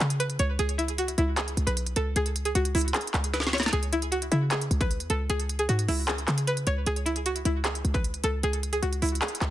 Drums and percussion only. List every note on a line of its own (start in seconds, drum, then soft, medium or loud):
0.00 clap loud
0.00 closed hi-hat medium
0.10 closed hi-hat medium
0.20 closed hi-hat medium
0.30 closed hi-hat medium
0.39 closed hi-hat medium
0.59 closed hi-hat medium
0.69 closed hi-hat medium
0.79 closed hi-hat medium
0.88 closed hi-hat medium
0.98 closed hi-hat medium
1.08 closed hi-hat medium
1.18 closed hi-hat medium
1.37 clap loud
1.37 closed hi-hat medium
1.48 closed hi-hat medium
1.57 closed hi-hat medium
1.67 closed hi-hat medium
1.77 closed hi-hat medium
1.86 closed hi-hat medium
1.96 closed hi-hat medium
2.16 closed hi-hat medium
2.26 closed hi-hat medium
2.36 closed hi-hat medium
2.45 closed hi-hat medium
2.55 closed hi-hat medium
2.65 closed hi-hat medium
2.75 closed hi-hat soft
2.75 open hi-hat medium
2.81 closed hi-hat soft
2.88 closed hi-hat medium
2.94 clap loud
2.94 closed hi-hat medium
3.01 closed hi-hat medium
3.07 closed hi-hat medium
3.14 clap loud
3.14 closed hi-hat medium
3.24 closed hi-hat medium
3.34 snare medium
3.34 closed hi-hat medium
3.40 snare medium
3.40 closed hi-hat medium
3.47 snare medium
3.53 snare medium
3.53 closed hi-hat medium
3.58 snare loud
3.58 closed hi-hat medium
3.63 snare loud
3.63 closed hi-hat medium
3.68 closed hi-hat medium
3.73 closed hi-hat medium
3.83 closed hi-hat medium
3.93 closed hi-hat medium
4.02 closed hi-hat medium
4.12 closed hi-hat medium
4.22 closed hi-hat medium
4.32 closed hi-hat medium
4.51 clap loud
4.51 closed hi-hat medium
4.61 closed hi-hat soft
4.71 closed hi-hat medium
4.81 kick medium
4.81 closed hi-hat medium
4.91 closed hi-hat medium
5.00 closed hi-hat medium
5.10 closed hi-hat medium
5.30 closed hi-hat medium
5.40 closed hi-hat medium
5.49 closed hi-hat medium
5.59 closed hi-hat medium
5.69 closed hi-hat medium
5.79 closed hi-hat medium
5.88 open hi-hat medium
6.07 clap loud
6.07 closed hi-hat medium
6.18 closed hi-hat soft
6.28 clap medium
6.28 closed hi-hat medium
6.38 closed hi-hat medium
6.47 closed hi-hat medium
6.57 closed hi-hat medium
6.67 closed hi-hat medium
6.86 closed hi-hat medium
6.96 closed hi-hat medium
7.06 closed hi-hat medium
7.16 closed hi-hat medium
7.26 closed hi-hat medium
7.36 closed hi-hat medium
7.45 closed hi-hat medium
7.64 clap loud
7.64 closed hi-hat medium
7.75 closed hi-hat medium
7.85 closed hi-hat medium
7.94 kick medium
7.94 closed hi-hat medium
8.04 closed hi-hat medium
8.14 closed hi-hat medium
8.24 closed hi-hat medium
8.43 closed hi-hat medium
8.53 closed hi-hat medium
8.63 closed hi-hat medium
8.73 closed hi-hat medium
8.83 closed hi-hat medium
8.93 closed hi-hat medium
9.02 closed hi-hat soft
9.02 open hi-hat medium
9.09 closed hi-hat soft
9.15 closed hi-hat medium
9.22 clap loud
9.22 closed hi-hat medium
9.28 closed hi-hat medium
9.35 closed hi-hat medium
9.41 clap loud
9.41 closed hi-hat medium